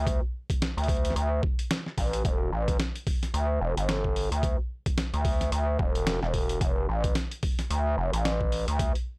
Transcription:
0.00 0.20 D2 loud
0.07 kick loud
0.07 closed hi-hat medium
0.50 kick loud
0.50 closed hi-hat medium
0.62 snare loud
0.62 closed hi-hat medium
0.77 1.14 D2 medium
0.77 closed hi-hat soft
0.84 closed hi-hat soft
0.88 kick loud
0.88 closed hi-hat soft
0.88 open hi-hat medium
0.97 closed hi-hat soft
1.05 closed hi-hat medium
1.10 snare soft
1.16 1.41 D2 loud
1.16 closed hi-hat medium
1.43 kick loud
1.59 closed hi-hat medium
1.71 snare loud
1.71 closed hi-hat medium
1.86 snare soft
1.98 2.23 A1 medium
1.98 kick medium
1.98 open hi-hat medium
2.13 closed hi-hat medium
2.25 2.50 E1 medium
2.25 kick loud
2.25 closed hi-hat medium
2.52 2.78 A1 loud
2.68 kick loud
2.68 closed hi-hat medium
2.80 snare loud
2.80 closed hi-hat medium
2.96 closed hi-hat soft
3.07 kick loud
3.07 open hi-hat medium
3.23 snare soft
3.23 closed hi-hat medium
3.34 3.59 D2 loud
3.34 closed hi-hat medium
3.61 3.75 E1 loud
3.77 4.29 G1 loud
3.77 closed hi-hat soft
3.89 snare loud
3.89 closed hi-hat medium
4.04 kick medium
4.16 open hi-hat medium
4.32 4.56 D2 medium
4.32 closed hi-hat medium
4.43 kick loud
4.43 closed hi-hat medium
4.86 kick loud
4.86 closed hi-hat medium
4.98 snare loud
4.98 closed hi-hat medium
5.14 5.50 D2 loud
5.14 closed hi-hat soft
5.25 kick loud
5.25 open hi-hat medium
5.41 snare medium
5.41 closed hi-hat medium
5.52 5.78 D2 loud
5.52 closed hi-hat medium
5.79 6.20 E1 loud
5.79 kick loud
5.95 closed hi-hat medium
6.07 snare loud
6.07 closed hi-hat medium
6.23 6.59 E1 loud
6.23 snare soft
6.34 kick medium
6.34 open hi-hat medium
6.49 closed hi-hat medium
6.61 6.87 F1 medium
6.61 kick loud
6.61 closed hi-hat medium
6.89 7.14 A1 loud
7.04 kick loud
7.04 closed hi-hat medium
7.15 snare loud
7.15 closed hi-hat medium
7.31 closed hi-hat soft
7.43 kick loud
7.43 open hi-hat medium
7.59 snare medium
7.59 closed hi-hat medium
7.70 7.96 D2 loud
7.70 closed hi-hat medium
7.98 8.11 F1 loud
8.13 8.65 A1 loud
8.13 closed hi-hat medium
8.25 snare loud
8.25 closed hi-hat medium
8.41 kick medium
8.52 open hi-hat medium
8.68 8.93 D2 loud
8.68 closed hi-hat medium
8.79 kick loud
8.79 closed hi-hat medium
8.95 closed hi-hat soft

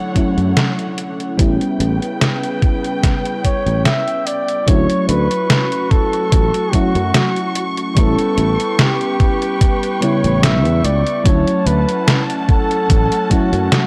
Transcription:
0.00 1.36 D3 medium
0.00 0.10 F#3 medium
0.00 0.11 A3 medium
0.00 0.11 C#4 medium
0.00 0.12 E4 medium
0.00 1.35 C#5 medium
0.00 1.36 F#5 medium
0.14 1.34 F#3 medium
0.14 1.34 A3 medium
0.14 1.35 C#4 medium
0.14 1.35 E4 medium
0.14 kick medium
0.14 closed hi-hat medium
0.37 0.53 F#2 medium
0.37 closed hi-hat soft
0.57 snare loud
0.57 closed hi-hat medium
0.79 closed hi-hat soft
0.98 closed hi-hat medium
1.20 closed hi-hat soft
1.37 1.57 A1 loud
1.37 4.65 C#3 medium
1.37 3.39 G3 medium
1.37 3.40 B3 medium
1.37 3.40 C#4 medium
1.37 3.41 E4 medium
1.37 4.65 B4 medium
1.37 4.65 G5 medium
1.37 kick loud
1.37 closed hi-hat medium
1.61 closed hi-hat soft
1.80 1.98 A1 loud
1.80 closed hi-hat medium
2.02 closed hi-hat soft
2.21 snare loud
2.21 closed hi-hat medium
2.43 closed hi-hat soft
2.62 kick loud
2.62 closed hi-hat soft
2.84 closed hi-hat soft
3.03 kick loud
3.03 snare medium
3.03 closed hi-hat medium
3.25 closed hi-hat soft
3.44 3.83 C#5 loud
3.44 kick medium
3.44 closed hi-hat medium
3.66 3.86 A1 medium
3.66 closed hi-hat soft
3.85 4.28 E5 loud
3.85 snare loud
3.85 closed hi-hat medium
4.08 closed hi-hat soft
4.27 4.69 D5 loud
4.27 closed hi-hat medium
4.48 closed hi-hat soft
4.66 4.86 D2 loud
4.66 6.68 F#3 medium
4.66 6.69 A3 medium
4.66 6.69 C#4 medium
4.66 6.70 E4 medium
4.66 7.93 F#4 medium
4.66 5.08 C#5 loud
4.66 11.21 C#6 medium
4.66 kick loud
4.66 closed hi-hat loud
4.90 closed hi-hat soft
5.09 5.27 D2 loud
5.09 5.92 B4 loud
5.09 closed hi-hat medium
5.31 closed hi-hat soft
5.50 snare loud
5.50 closed hi-hat loud
5.72 closed hi-hat soft
5.91 6.75 A4 loud
5.91 kick loud
5.91 closed hi-hat soft
6.13 closed hi-hat soft
6.32 6.50 A1 medium
6.32 kick loud
6.32 closed hi-hat loud
6.54 closed hi-hat soft
6.72 7.91 F#3 medium
6.72 7.92 A3 medium
6.72 7.92 C#4 medium
6.72 7.93 E4 medium
6.72 7.71 F#4 loud
6.72 kick medium
6.72 closed hi-hat medium
6.95 7.11 F#2 medium
6.95 closed hi-hat soft
7.14 snare loud
7.14 closed hi-hat loud
7.36 closed hi-hat soft
7.55 closed hi-hat medium
7.77 closed hi-hat soft
7.95 8.15 A1 loud
7.95 9.97 G3 medium
7.95 9.97 B3 medium
7.95 9.98 C#4 medium
7.95 9.98 E4 medium
7.95 8.80 A4 loud
7.95 11.22 B4 medium
7.95 11.22 G5 medium
7.95 kick loud
7.95 closed hi-hat loud
8.19 closed hi-hat soft
8.38 8.56 A1 loud
8.38 closed hi-hat medium
8.60 closed hi-hat soft
8.79 10.02 G4 loud
8.79 snare loud
8.79 closed hi-hat loud
9.01 closed hi-hat soft
9.20 kick loud
9.20 closed hi-hat soft
9.42 closed hi-hat soft
9.61 kick loud
9.61 closed hi-hat loud
9.83 closed hi-hat soft
10.01 11.21 C#3 medium
10.01 11.20 G3 medium
10.01 11.21 B3 medium
10.01 11.22 E4 medium
10.01 10.45 C#5 loud
10.01 closed hi-hat medium
10.24 10.65 A1 medium
10.24 closed hi-hat soft
10.43 10.86 E5 loud
10.43 snare loud
10.43 closed hi-hat loud
10.65 10.81 E2 medium
10.65 closed hi-hat soft
10.84 11.02 C#2 loud
10.84 11.27 D5 loud
10.84 closed hi-hat medium
11.07 closed hi-hat soft
11.24 11.43 D2 loud
11.24 13.25 F#3 medium
11.24 13.26 A3 medium
11.24 13.87 C#4 medium
11.24 13.27 C#4 medium
11.24 13.27 E4 medium
11.24 11.68 C#5 loud
11.24 13.87 F#5 medium
11.24 13.87 A5 medium
11.24 kick loud
11.24 closed hi-hat loud
11.47 closed hi-hat soft
11.66 11.84 D2 loud
11.66 12.23 B4 loud
11.66 closed hi-hat medium
11.89 closed hi-hat soft
12.08 snare loud
12.08 closed hi-hat medium
12.30 closed hi-hat soft
12.49 13.32 A4 loud
12.49 kick loud
12.49 closed hi-hat soft
12.71 closed hi-hat soft
12.90 13.08 A1 medium
12.90 kick loud
12.90 closed hi-hat loud
13.12 closed hi-hat soft
13.29 13.87 F#3 medium
13.29 13.87 A3 medium
13.29 13.87 C#4 medium
13.29 13.87 E4 medium
13.29 13.87 F#4 loud
13.29 kick medium
13.29 closed hi-hat medium
13.53 13.68 F#2 medium
13.53 closed hi-hat soft
13.72 snare loud
13.72 closed hi-hat loud

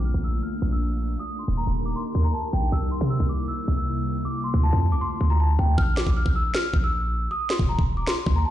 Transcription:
0.00 0.14 A#1 loud
0.00 1.18 A3 medium
0.00 1.18 A#3 medium
0.00 1.18 D4 medium
0.05 0.20 F6 medium
0.14 0.42 A#1 loud
0.24 0.39 E6 medium
0.43 0.70 F6 medium
0.62 1.17 A#1 loud
0.72 1.17 E6 medium
1.19 2.71 D#3 medium
1.19 2.71 D#4 medium
1.19 2.71 G4 medium
1.19 2.71 A#4 medium
1.19 1.35 D#6 medium
1.39 1.54 C6 medium
1.48 1.66 D#1 loud
1.57 1.84 A#5 medium
1.67 1.95 D#1 loud
1.86 1.94 D6 medium
1.96 2.23 C6 medium
2.15 2.33 D#2 loud
2.24 2.32 A#5 medium
2.34 2.49 A5 medium
2.53 2.71 A#1 loud
2.53 2.69 G5 medium
2.72 3.00 C2 loud
2.72 4.24 C3 medium
2.72 4.24 G3 medium
2.72 4.24 A#3 medium
2.72 4.24 E4 medium
2.72 2.88 E6 loud
2.91 3.07 C6 medium
3.01 3.19 C3 loud
3.10 3.26 E6 medium
3.20 3.48 C2 loud
3.29 3.45 D6 medium
3.48 3.75 E6 medium
3.68 4.23 C2 loud
3.77 4.22 E6 medium
4.25 5.77 D3 medium
4.25 5.77 A3 medium
4.25 5.77 C4 medium
4.25 5.77 F4 medium
4.25 4.41 D6 loud
4.44 4.60 C6 medium
4.54 4.72 D2 loud
4.63 4.90 A5 medium
4.73 4.94 F2 loud
4.92 5.01 C2 loud
4.92 5.00 D6 medium
5.01 5.28 C6 medium
5.21 5.57 D2 loud
5.30 5.38 A#5 medium
5.40 5.55 A5 medium
5.59 5.77 D2 loud
5.59 5.74 G5 medium
5.78 6.06 A#1 loud
5.78 5.93 F6 loud
5.78 kick loud
5.97 6.12 D6 medium
5.97 snare loud
6.07 6.25 A#1 loud
6.07 kick loud
6.17 6.32 F6 medium
6.26 6.53 A#1 loud
6.26 kick medium
6.36 6.51 E6 medium
6.55 6.81 F6 medium
6.55 snare loud
6.74 7.29 A#1 loud
6.74 kick loud
6.84 7.28 E6 medium
7.31 7.46 D#6 loud
7.50 7.66 C6 medium
7.50 snare loud
7.59 7.78 D#1 loud
7.59 kick loud
7.69 7.96 A#5 medium
7.79 8.06 D#1 loud
7.79 kick medium
7.97 8.05 D6 medium
8.07 8.34 C6 medium
8.07 snare loud
8.26 8.45 D#2 loud
8.26 kick loud
8.36 8.44 A#5 medium
8.45 8.51 A5 medium

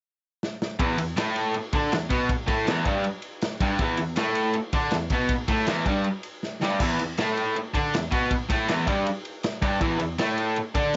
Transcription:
0.43 snare medium
0.62 snare medium
0.79 0.97 E2 medium
0.79 0.98 E3 medium
0.79 kick loud
0.79 ride loud
0.98 1.13 E2 medium
0.98 ride medium
1.17 1.54 A2 medium
1.17 1.54 A3 loud
1.17 snare loud
1.17 ride loud
1.36 ride medium
1.54 muted overdriven electric guitar stroke medium
1.54 ride loud
1.73 1.92 D3 medium
1.73 1.92 D4 loud
1.73 kick loud
1.73 ride medium
1.92 2.07 E2 medium
1.92 snare loud
1.92 ride loud
2.10 2.29 B2 loud
2.10 2.29 B3 loud
2.10 kick loud
2.10 ride medium
2.29 muted overdriven electric guitar stroke medium
2.29 kick loud
2.29 ride loud
2.48 2.66 A2 medium
2.48 2.67 A3 loud
2.48 kick loud
2.48 ride medium
2.66 2.85 E2 medium
2.66 2.85 E3 loud
2.66 snare loud
2.66 ride medium
2.85 3.04 G2 medium
2.85 3.05 G3 loud
2.85 kick loud
2.85 ride medium
3.04 ride loud
3.22 ride medium
3.41 snare loud
3.41 ride medium
3.60 3.79 G2 loud
3.60 3.80 G3 loud
3.60 kick loud
3.60 ride medium
3.79 3.98 E2 medium
3.79 3.99 E3 loud
3.79 kick loud
3.79 ride loud
3.97 4.14 E2 medium
3.97 ride medium
4.16 4.54 A2 medium
4.16 4.55 A3 loud
4.16 snare loud
4.16 ride loud
4.35 ride medium
4.54 muted overdriven electric guitar stroke medium
4.54 ride loud
4.73 4.92 D3 medium
4.73 4.92 D4 medium
4.73 kick loud
4.73 ride medium
4.91 5.08 E2 medium
4.91 snare loud
4.91 ride loud
5.10 5.30 B2 loud
5.10 5.30 B3 loud
5.10 kick loud
5.10 ride medium
5.29 muted overdriven electric guitar stroke medium
5.29 kick loud
5.29 ride loud
5.48 5.67 A2 medium
5.48 5.68 A3 medium
5.48 kick loud
5.48 ride medium
5.67 5.86 E2 medium
5.67 5.86 E3 loud
5.67 snare loud
5.67 ride loud
5.86 6.05 G2 medium
5.86 6.05 G3 loud
5.86 kick loud
5.86 ride medium
6.04 ride medium
6.23 ride medium
6.43 snare medium
6.61 6.79 G2 loud
6.61 6.81 G3 loud
6.61 snare medium
6.80 6.98 E2 medium
6.80 6.99 E3 loud
6.80 kick loud
6.80 crash loud
6.99 7.15 E2 medium
6.99 ride medium
7.17 7.56 A2 medium
7.17 7.56 A3 medium
7.17 snare loud
7.17 ride loud
7.37 ride medium
7.55 muted overdriven electric guitar stroke medium
7.55 ride loud
7.74 7.93 D3 medium
7.74 7.93 D4 loud
7.74 kick loud
7.74 ride medium
7.94 8.09 E2 medium
7.94 snare loud
7.94 ride loud
8.11 8.30 B2 loud
8.11 8.31 B3 loud
8.11 kick loud
8.11 ride medium
8.30 muted overdriven electric guitar stroke medium
8.30 kick loud
8.30 ride loud
8.50 8.68 A2 medium
8.50 8.69 A3 loud
8.50 kick loud
8.50 ride medium
8.68 8.87 E2 medium
8.68 8.87 E3 loud
8.68 snare loud
8.68 ride loud
8.87 9.06 G2 medium
8.87 9.06 G3 loud
8.87 kick medium
8.87 ride medium
9.06 ride loud
9.25 ride medium
9.43 snare loud
9.43 ride medium
9.62 9.80 G2 loud
9.62 9.81 G3 loud
9.62 kick loud
9.62 ride medium
9.81 9.98 E2 medium
9.81 10.00 E3 loud
9.81 kick loud
9.81 ride loud
9.99 10.15 E2 medium
9.99 ride medium
10.18 10.56 A2 medium
10.18 10.57 A3 medium
10.18 snare loud
10.18 ride medium
10.38 ride medium
10.56 muted overdriven electric guitar stroke medium
10.56 ride medium
10.75 10.94 D3 loud
10.75 10.94 D4 loud
10.75 kick loud
10.75 ride medium

